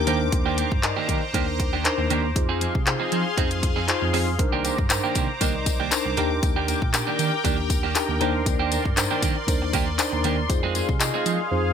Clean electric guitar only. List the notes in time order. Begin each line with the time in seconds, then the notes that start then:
0.07 D#3 A#3 D4 G4
0.20 muted clean electric guitar stroke
0.32 muted clean electric guitar stroke
0.46 D#3 A#3 D4 G4
0.58 D#3 A#3 D4 G4
0.71 muted clean electric guitar stroke
0.83 muted clean electric guitar stroke
0.96 D#3 A#3 D4 G4
1.09 D#3 A#3 D4 G4
1.22 muted clean electric guitar stroke
1.34 D#3 A#3 D4 G4
1.48 muted clean electric guitar stroke
1.60 muted clean electric guitar stroke
1.73 D#3 A#3 D4 G4
1.85 muted clean electric guitar stroke
1.98 muted clean electric guitar stroke
2.10 D#3 A#3 D4 G4
2.24 muted clean electric guitar stroke
2.36 muted clean electric guitar stroke
2.49 F3 C4 D#4 G#4
2.61 F3 C4 D#4 G#4
2.75 muted clean electric guitar stroke
2.86 muted clean electric guitar stroke
3.00 F3 C4 D#4 G#4
3.12 F3 C4 D#4 G#4
3.25 muted clean electric guitar stroke
3.37 F3 C4 D#4 G#4
3.51 muted clean electric guitar stroke
3.62 muted clean electric guitar stroke
3.76 F3 C4 D#4 G#4
3.88 muted clean electric guitar stroke
4.01 muted clean electric guitar stroke
4.13 F3 C4 D#4 G#4
4.27 muted clean electric guitar stroke
4.39 muted clean electric guitar stroke
4.52 D#3 A#3 D4 G4
4.64 D#3 A#3 D4 G4
4.78 muted clean electric guitar stroke
4.90 muted clean electric guitar stroke
5.04 D#3 A#3 D4 G4
5.15 D#3 A#3 D4 G4
5.29 muted clean electric guitar stroke
5.41 D#3 A#3 D4 G4
5.54 muted clean electric guitar stroke
5.66 muted clean electric guitar stroke
5.80 D#3 A#3 D4 G4
5.92 muted clean electric guitar stroke
6.05 muted clean electric guitar stroke
6.17 D#3 A#3 D4 G4
6.31 muted clean electric guitar stroke
6.43 muted clean electric guitar stroke
6.56 D#3 A#3 D4 G4
6.68 D#3 A#3 D4 G4
6.82 muted clean electric guitar stroke
6.94 muted clean electric guitar stroke
7.07 D#3 A#3 D4 G4
7.19 D#3 A#3 D4 G4
7.32 muted clean electric guitar stroke
7.44 D#3 A#3 D4 G4
7.58 muted clean electric guitar stroke
7.70 muted clean electric guitar stroke
7.83 D#3 A#3 D4 G4
7.95 muted clean electric guitar stroke
8.09 muted clean electric guitar stroke
8.21 D#3 A#3 D4 G4
8.34 muted clean electric guitar stroke
8.46 muted clean electric guitar stroke
8.59 D#3 A#3 D4 G4
8.71 D#3 A#3 D4 G4
8.85 muted clean electric guitar stroke
8.97 muted clean electric guitar stroke
9.11 D#3 A#3 D4 G4
9.23 D#3 A#3 D4 G4
9.36 muted clean electric guitar stroke
9.48 muted clean electric guitar stroke
9.62 muted clean electric guitar stroke
9.74 D#3 A#3 D4 G4
9.87 muted clean electric guitar stroke
9.99 muted clean electric guitar stroke
10.12 muted clean electric guitar stroke
10.24 D#3 A#3 D4 G4
10.38 muted clean electric guitar stroke
10.50 muted clean electric guitar stroke
10.63 G#3 C4 D#4 G#4
10.75 G#3 C4 D#4 G#4
10.89 muted clean electric guitar stroke
11.01 muted clean electric guitar stroke
11.14 G#3 C4 D#4 G#4
11.26 G#3 C4 D#4 G#4
11.39 muted clean electric guitar stroke